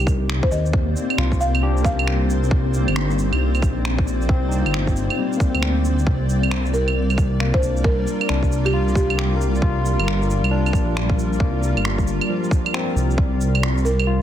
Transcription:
Already playing: detuned saw bass C2, ambient pad A#3 C4 C5 D5, tine electric piano D#4 G4
0.07 kick, shaker
0.30 finger snap
0.43 marimba C5, kick
0.51 detuned saw bass D#2, marimba D#5, shaker
0.66 shaker
0.73 kick
0.96 shaker
1.10 claves
1.18 detuned saw bass C2, tine electric piano F4, finger snap
1.32 kick, shaker
1.40 marimba F5, shaker
1.55 claves
1.63 tine electric piano D4 G4
1.77 shaker
1.82 tine electric piano A#4, marimba F5, kick, shaker
1.99 claves
2.07 finger snap
2.30 shaker
2.44 shaker
2.51 kick
2.74 shaker
2.88 detuned saw bass G1, claves
2.96 tine electric piano D#4, finger snap
3.10 shaker
3.19 shaker
3.33 detuned saw bass C2, claves
3.55 claves, shaker
3.62 detuned saw bass A#1, kick, shaker
3.85 finger snap
3.98 kick
4.08 shaker
4.22 shaker
4.29 detuned saw bass C2, tine electric piano C4, kick
4.48 tine electric piano D#4, shaker
4.61 tine electric piano F4
4.66 detuned saw bass G1, claves
4.74 finger snap
4.87 kick, shaker
4.96 shaker
5.10 claves
5.18 tine electric piano G3
5.33 shaker
5.37 tine electric piano A#3, kick, shaker
5.50 tine electric piano C4
5.54 detuned saw bass D2, claves
5.63 finger snap
5.85 shaker
5.99 shaker
6.07 detuned saw bass C2, ambient pad G3 F4 A#4, kick
6.29 shaker
6.43 claves
6.51 finger snap
6.66 shaker
6.74 marimba A#4, shaker
6.88 claves
7.10 claves, shaker
7.18 kick, shaker
7.40 tine electric piano A#3, finger snap
7.54 marimba C5, kick
7.59 detuned saw bass C2, tine electric piano D4, shaker
7.77 shaker
7.84 marimba A#4, kick
8.07 shaker
8.21 claves
8.29 detuned saw bass C2, tine electric piano D4, finger snap
8.43 kick, shaker
8.52 shaker
8.65 marimba G4, claves
8.74 tine electric piano F4
8.88 shaker
8.95 marimba G4, kick, shaker
9.10 claves
9.18 tine electric piano G4, finger snap
9.36 tine electric piano A#4
9.41 shaker
9.55 shaker
9.62 tine electric piano F4, kick
9.86 shaker
9.99 detuned saw bass G1, claves
10.08 finger snap
10.22 shaker
10.30 shaker
10.43 detuned saw bass C2, claves
10.51 tine electric piano D4
10.66 claves, shaker
10.73 detuned saw bass A#1, kick, shaker
10.97 finger snap
11.10 kick
11.19 shaker
11.33 shaker
11.40 detuned saw bass C2, tine electric piano A#3, kick
11.63 shaker
11.77 detuned saw bass G1, claves
11.85 finger snap
11.98 kick, shaker
12.07 shaker
12.21 claves
12.30 tine electric piano F3
12.44 shaker
12.51 kick, shaker
12.66 claves
12.74 tine electric piano C4, finger snap
12.96 detuned saw bass C2, shaker
13.11 shaker
13.18 detuned saw bass C2, ambient pad A#3 C4 C5 D5, kick
13.41 shaker
13.55 claves
13.63 finger snap
13.78 shaker
13.85 marimba A#4, shaker
13.99 claves
14.07 tine electric piano F4

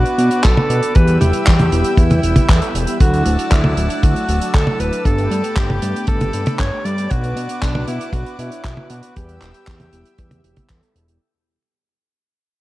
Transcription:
Already playing: analog polysynth B3 D4 F#4 B4, alto saxophone F#4, analog synth pad B4 D5 F#5 D6
0.06 closed hi-hat
0.18 analog synth bass B2, analog polysynth B3 D4 F#4 C#5, closed hi-hat
0.31 closed hi-hat
0.43 analog synth bass B1, alto saxophone A4, kick, clap, closed hi-hat
0.57 analog polysynth B3 D4 F#4 B4, high tom
0.70 analog synth bass B2, closed hi-hat
0.83 closed hi-hat
0.95 analog synth bass E2, analog polysynth G3 B3 E4 G4, alto saxophone B4, analog synth pad E5 G5 E6, kick, closed hi-hat
1.07 closed hi-hat
1.21 analog synth bass E1, alto saxophone G4, closed hi-hat, high tom
1.33 analog polysynth G3 B3 E4 G4, closed hi-hat
1.47 analog synth bass E2, kick, clap, closed hi-hat
1.59 closed hi-hat, high tom
1.72 analog synth bass E1, analog polysynth G3 B3 E4 G4, closed hi-hat
1.84 closed hi-hat
1.97 analog synth bass E2, alto saxophone E4, kick, closed hi-hat
2.10 closed hi-hat, high tom
2.23 analog synth bass E1, analog polysynth G3 B3 E4 G4, closed hi-hat
2.36 kick, closed hi-hat, high tom
2.49 analog synth bass E2, analog polysynth G3 B3 E4 A4, kick, clap, closed hi-hat
2.62 closed hi-hat
2.75 analog synth bass E1, closed hi-hat
2.87 analog polysynth G3 B3 E4 G4, closed hi-hat
3.00 analog synth bass D2, analog polysynth F#3 A3 D4 E4, alto saxophone F#4, analog synth pad D5 F#5 A5 E6, kick, closed hi-hat
3.14 closed hi-hat
3.26 analog synth bass D1, closed hi-hat
3.39 analog polysynth F#3 A3 D4 E4, closed hi-hat
3.51 analog synth bass D2, alto saxophone E4, kick, clap, closed hi-hat
3.64 high tom
3.77 analog synth bass D1, analog polysynth F#3 A3 D4 E4, closed hi-hat
3.90 closed hi-hat
4.03 analog synth bass D2, alto saxophone F#4, kick, closed hi-hat
4.16 closed hi-hat
4.28 analog synth bass D1, analog polysynth F#3 A3 D4 F#4, closed hi-hat
4.41 closed hi-hat
4.54 analog synth bass D2, alto saxophone A4, kick, clap, closed hi-hat
4.67 analog polysynth F#3 A3 D4 E4, high tom
4.80 analog synth bass D1, alto saxophone B4, closed hi-hat
4.93 closed hi-hat
5.05 analog synth bass G1, analog polysynth A3 B3 D4 G4, alto saxophone A4, analog synth pad B4 G5 D6, kick, closed hi-hat
5.18 closed hi-hat
5.31 analog synth bass G2, closed hi-hat
5.44 analog polysynth A3 B3 D4 G4, closed hi-hat
5.56 analog synth bass G1, alto saxophone G4, kick, clap, closed hi-hat
5.70 high tom
5.82 analog synth bass G2, analog polysynth A3 B3 D4 G4, closed hi-hat
5.96 closed hi-hat
6.07 analog synth bass G1, alto saxophone A4, kick, closed hi-hat
6.21 closed hi-hat, high tom
6.33 analog synth bass G2, analog polysynth A3 B3 D4 A4, closed hi-hat
6.46 closed hi-hat, high tom
6.59 analog synth bass G1, alto saxophone C#5, kick, clap, closed hi-hat
6.72 analog polysynth A3 B3 D4 G4
6.85 analog synth bass G2, alto saxophone D5, closed hi-hat
6.98 closed hi-hat
7.11 analog synth bass B1, analog polysynth B3 D4 F#4 B4, alto saxophone F#4, analog synth pad B4 D5 F#5, kick, closed hi-hat
7.24 closed hi-hat
7.36 analog synth bass B2, closed hi-hat
7.49 analog polysynth B3 D4 F#4 B4, closed hi-hat
7.62 analog synth bass B1, alto saxophone D4, kick, clap, closed hi-hat
7.75 high tom
7.87 analog synth bass B2, analog polysynth B3 D4 F#4 B4, alto saxophone E4, closed hi-hat
8.01 closed hi-hat
8.13 analog synth bass B1, alto saxophone F#4, kick, closed hi-hat
8.26 closed hi-hat
8.39 analog synth bass B2, analog polysynth B3 D4 F#4 C#5, alto saxophone E4, closed hi-hat
8.52 closed hi-hat
8.64 analog synth bass B1, kick, clap, closed hi-hat
8.77 analog polysynth B3 D4 F#4 B4, high tom
8.90 analog synth bass B2, alto saxophone F#4, closed hi-hat
9.03 closed hi-hat
9.16 analog synth bass E2, analog polysynth G3 B3 E4 G4, alto saxophone G4, analog synth pad E5 G5 E6, kick, closed hi-hat
9.29 closed hi-hat
9.42 analog synth bass E1, clap, closed hi-hat
9.54 analog polysynth G3 B3 E4 G4, closed hi-hat
9.67 analog synth bass E2, kick, clap, closed hi-hat
9.80 closed hi-hat, high tom
9.93 analog synth bass E1, analog polysynth G3 B3 E4 G4, closed hi-hat
10.05 closed hi-hat
10.18 analog synth bass E2, kick, closed hi-hat
10.31 closed hi-hat, high tom
10.44 analog synth bass E1, analog polysynth G3 B3 E4 G4, closed hi-hat
10.56 kick, closed hi-hat, high tom
10.69 analog synth bass E2, analog polysynth G3 B3 E4 A4, kick, clap, closed hi-hat
10.83 closed hi-hat
10.95 analog synth bass E1, closed hi-hat
11.08 analog polysynth G3 B3 E4 G4, closed hi-hat

